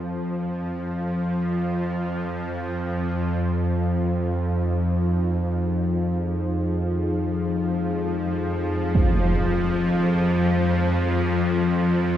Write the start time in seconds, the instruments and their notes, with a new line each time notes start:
Already playing: synth drone F2 F3
3.42 synth drone F2 F3, ambient pad D#4
4.04 ambient pad G#4
6.41 ambient pad F5
8.95 impact
10.82 ambient pad C4